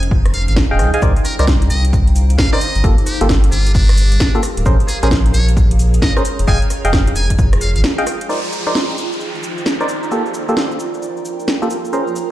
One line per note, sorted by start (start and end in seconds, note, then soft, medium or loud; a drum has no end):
0.00 0.48 F1 medium
0.00 2.84 D#4 medium
0.00 1.02 G#4 medium
0.00 1.76 F5 medium
0.00 1.76 G5 medium
0.00 closed hi-hat medium
0.11 kick loud
0.26 cross-stick medium
0.26 closed hi-hat medium
0.34 0.43 F5 medium
0.34 open hi-hat loud
0.48 0.66 G#1 loud
0.48 0.54 F5 medium
0.48 closed hi-hat medium
0.56 kick loud
0.56 snare loud
0.71 0.81 D#1 loud
0.71 0.90 G#4 medium
0.71 0.90 D#5 medium
0.71 0.90 F5 medium
0.71 0.90 G5 loud
0.79 0.91 C2 medium
0.79 cross-stick medium
0.79 open hi-hat loud
0.94 1.01 G#4 medium
0.94 1.01 D#5 medium
0.94 1.01 F5 medium
0.94 1.01 G#5 medium
0.94 closed hi-hat medium
1.02 1.14 C2 medium
1.02 1.13 D#4 medium
1.02 1.13 A#4 medium
1.02 1.13 C5 medium
1.02 1.13 D5 medium
1.02 kick loud
1.02 shaker soft
1.16 closed hi-hat soft
1.16 shaker soft
1.23 1.34 A#4 medium
1.23 3.55 C5 medium
1.23 cross-stick soft
1.23 open hi-hat loud
1.23 shaker medium
1.39 1.68 C2 medium
1.39 1.45 D#4 loud
1.39 1.45 A#4 medium
1.39 1.45 C5 medium
1.39 1.45 D5 loud
1.39 closed hi-hat medium
1.39 shaker soft
1.47 kick loud
1.47 snare loud
1.47 shaker soft
1.62 closed hi-hat medium
1.62 shaker soft
1.68 2.36 C2 medium
1.68 1.83 D#5 medium
1.68 3.58 D6 medium
1.68 open hi-hat medium
1.68 shaker medium
1.75 2.84 A#5 medium
1.85 closed hi-hat medium
1.85 shaker soft
1.93 kick loud
1.93 shaker soft
2.08 closed hi-hat medium
2.08 shaker soft
2.16 open hi-hat medium
2.16 shaker medium
2.30 closed hi-hat medium
2.30 shaker soft
2.38 2.50 F5 medium
2.38 kick loud
2.38 snare loud
2.38 shaker soft
2.53 2.59 D#4 medium
2.53 2.59 A#4 medium
2.53 2.59 C5 medium
2.53 2.59 D5 medium
2.53 2.84 D#5 medium
2.53 cross-stick medium
2.53 shaker soft
2.61 open hi-hat loud
2.61 shaker medium
2.75 2.83 G1 medium
2.75 closed hi-hat medium
2.75 shaker soft
2.84 2.96 G1 medium
2.84 2.95 A#3 medium
2.84 2.95 F4 medium
2.84 2.95 G4 medium
2.84 4.66 G4 medium
2.84 2.95 A4 medium
2.84 kick loud
2.84 shaker soft
2.97 5.40 A#4 medium
2.97 closed hi-hat soft
2.97 shaker soft
3.06 3.20 G4 medium
3.06 cross-stick soft
3.06 open hi-hat loud
3.06 shaker medium
3.20 3.50 G1 loud
3.20 3.27 A#3 medium
3.20 3.27 F4 medium
3.20 3.27 G4 medium
3.20 3.27 A4 loud
3.20 5.40 F5 medium
3.20 closed hi-hat medium
3.20 shaker soft
3.29 kick loud
3.29 snare loud
3.29 shaker soft
3.44 closed hi-hat medium
3.44 shaker soft
3.52 4.18 G1 medium
3.52 3.73 F4 medium
3.52 open hi-hat loud
3.52 shaker medium
3.67 closed hi-hat medium
3.67 shaker soft
3.74 4.39 D4 medium
3.74 kick loud
3.74 shaker soft
3.89 cross-stick medium
3.89 closed hi-hat medium
3.89 shaker soft
3.98 open hi-hat loud
3.98 shaker medium
4.12 closed hi-hat medium
4.12 shaker soft
4.20 kick loud
4.20 snare loud
4.20 shaker soft
4.35 4.41 A#3 medium
4.35 4.41 F4 medium
4.35 4.41 G4 medium
4.35 4.41 A4 medium
4.35 shaker soft
4.43 cross-stick medium
4.43 open hi-hat loud
4.43 shaker medium
4.57 4.64 D1 medium
4.57 closed hi-hat medium
4.57 shaker soft
4.66 4.78 A#1 loud
4.66 4.77 C#4 medium
4.66 4.77 G#4 medium
4.66 8.29 G#4 medium
4.66 4.77 A#4 medium
4.66 4.77 C5 medium
4.66 kick loud
4.66 shaker soft
4.78 6.48 C#5 medium
4.78 closed hi-hat soft
4.78 shaker soft
4.88 4.98 G#4 medium
4.88 7.21 A#5 medium
4.88 cross-stick soft
4.88 open hi-hat loud
4.88 shaker medium
5.03 5.32 A#1 loud
5.03 5.09 C#4 loud
5.03 5.08 G#4 medium
5.03 5.09 G#4 medium
5.03 5.09 A#4 medium
5.03 5.09 C5 loud
5.03 closed hi-hat medium
5.03 shaker soft
5.11 kick loud
5.11 snare loud
5.11 shaker soft
5.26 closed hi-hat medium
5.26 shaker soft
5.34 6.00 A#1 medium
5.34 5.47 C#5 medium
5.34 open hi-hat loud
5.34 shaker medium
5.49 closed hi-hat medium
5.49 shaker soft
5.57 kick loud
5.57 shaker soft
5.71 closed hi-hat medium
5.71 shaker soft
5.79 open hi-hat loud
5.79 shaker medium
5.94 closed hi-hat medium
5.94 shaker soft
6.02 6.14 D#5 medium
6.02 kick loud
6.02 snare loud
6.02 shaker soft
6.17 6.23 C#4 medium
6.17 6.23 G#4 medium
6.17 6.23 A#4 medium
6.17 6.23 C5 medium
6.17 cross-stick medium
6.17 shaker soft
6.25 open hi-hat loud
6.25 shaker medium
6.39 6.46 F1 medium
6.39 closed hi-hat medium
6.39 shaker soft
6.47 6.60 F1 loud
6.47 9.03 F4 medium
6.47 6.58 G#4 medium
6.47 6.58 D#5 medium
6.47 6.58 F5 medium
6.47 6.58 G5 medium
6.47 6.61 G#5 loud
6.47 kick loud
6.47 shaker soft
6.62 closed hi-hat soft
6.62 shaker soft
6.70 cross-stick soft
6.70 open hi-hat loud
6.70 shaker medium
6.85 7.14 F1 loud
6.85 6.91 G#4 loud
6.85 6.91 D#5 medium
6.85 6.91 F5 medium
6.85 6.91 G5 loud
6.85 closed hi-hat medium
6.85 shaker soft
6.93 kick loud
6.93 snare loud
6.93 shaker soft
7.07 closed hi-hat medium
7.07 shaker soft
7.16 7.75 F1 medium
7.16 7.29 G#5 medium
7.16 open hi-hat loud
7.16 shaker medium
7.27 8.29 D#5 medium
7.27 kick medium
7.27 closed hi-hat medium
7.27 shaker soft
7.32 9.03 G5 medium
7.38 kick loud
7.38 shaker soft
7.53 cross-stick medium
7.53 closed hi-hat medium
7.53 shaker soft
7.61 7.71 F5 medium
7.61 open hi-hat loud
7.61 shaker medium
7.76 7.84 G#1 medium
7.76 7.81 F5 medium
7.76 closed hi-hat medium
7.76 shaker soft
7.84 snare loud
7.84 shaker soft
7.98 8.05 G#4 medium
7.98 8.04 D#5 medium
7.98 8.04 F5 medium
7.98 8.04 G5 medium
7.98 closed hi-hat soft
7.98 shaker soft
8.07 cross-stick medium
8.07 open hi-hat loud
8.07 shaker medium
8.21 closed hi-hat medium
8.21 shaker soft
8.29 8.40 D#4 medium
8.29 10.11 D#4 medium
8.29 8.40 A#4 medium
8.29 8.40 C5 medium
8.29 8.40 D5 medium
8.29 downlifter medium
8.29 shaker soft
8.42 10.81 C5 medium
8.42 shaker soft
8.52 shaker medium
8.66 8.73 D#4 loud
8.66 8.73 A#4 medium
8.66 8.73 C5 medium
8.66 8.73 D5 loud
8.66 shaker soft
8.75 snare loud
8.75 shaker soft
8.90 shaker soft
8.98 shaker medium
9.02 10.69 D5 medium
9.12 10.85 A#5 medium
9.12 shaker soft
9.21 shaker soft
9.35 shaker soft
9.43 shaker medium
9.58 shaker soft
9.66 snare loud
9.66 shaker soft
9.80 9.86 D#4 medium
9.80 9.87 A#4 medium
9.80 9.86 C5 medium
9.80 9.86 D5 medium
9.80 shaker soft
9.89 shaker medium
10.03 shaker soft
10.11 10.22 A#3 medium
10.11 10.22 F4 medium
10.11 12.31 F4 medium
10.11 10.22 G4 medium
10.11 10.22 A4 medium
10.11 shaker soft
10.26 shaker soft
10.33 12.31 A#4 medium
10.33 shaker medium
10.47 10.55 A#3 loud
10.47 10.55 F4 medium
10.47 10.55 G4 medium
10.47 10.55 A4 loud
10.47 11.93 G5 medium
10.47 shaker soft
10.57 snare loud
10.57 shaker soft
10.71 shaker soft
10.80 shaker medium
10.94 shaker soft
11.02 shaker soft
11.17 shaker soft
11.25 shaker medium
11.40 shaker soft
11.48 snare loud
11.48 shaker soft
11.62 11.68 A#3 medium
11.62 11.68 F4 medium
11.62 11.68 G4 medium
11.62 11.68 A4 medium
11.62 shaker soft
11.70 shaker medium
11.85 shaker soft
11.93 12.31 C#4 medium
11.93 12.04 C#4 medium
11.93 12.04 G#4 medium
11.93 12.04 A#4 medium
11.93 12.04 C5 medium
11.93 shaker soft
12.07 shaker soft
12.16 shaker medium